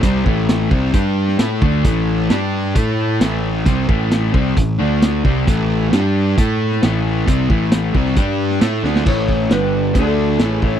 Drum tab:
CC |----------------|----------------|----------------|----------------|
HH |x---x---x---x---|x---x---x---x---|x---x---x---x---|x---x---x---x---|
SD |----o------oo---|----o-------o---|----o-------o---|----o------oo---|
BD |o-o---o-o-----o-|o-------o-------|o-o---o-o-----o-|o-------o-------|

CC |----------------|x---------------|
HH |x---x---x---x---|----x---x---x---|
SD |----o--o---oo-oo|----o-------o---|
BD |o-o---o-o-------|o-o-----o-----o-|